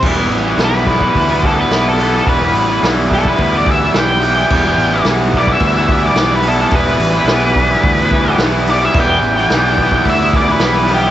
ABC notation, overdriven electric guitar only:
X:1
M:4/4
L:1/16
Q:1/4=108
K:Em
V:1 name="Overdriven electric guitar"
[E,G,B,E] [G,B,E]2 [G,B,E] [E,G,B,E]2 [E,G,B,E] [G,B,E]2 [G,B,E] [E,G,B,E] [G,B,E] [E,G,B,E]2 [E,G,B,E] [G,B,E] | [E,G,B,E] [G,B,E]2 [G,B,E] [E,G,B,E]2 [E,G,B,E] [G,B,E]2 [G,B,E] [E,G,B,E] [G,B,E] [E,G,B,E]2 [E,G,B,E] [G,B,E] | [E,G,B,E] [G,B,E]2 [G,B,E] [E,G,B,E]2 [E,G,B,E] [G,B,E]2 [G,B,E] [E,G,B,E] [G,B,E] [E,G,B,E]2 [E,G,B,E] [G,B,E] | [E,G,B,E] [G,B,E]2 [G,B,E] [E,G,B,E]2 [E,G,B,E] [G,B,E]2 [G,B,E] [E,G,B,E] [G,B,E] [E,G,B,E]2 [E,G,B,E] [G,B,E] |
[E,G,B,E] [G,B,E]2 [G,B,E] [E,G,B,E]2 [E,G,B,E] [G,B,E]2 [G,B,E] [E,G,B,E] [G,B,E] [E,G,B,E]2 [E,G,B,E] [G,B,E] |]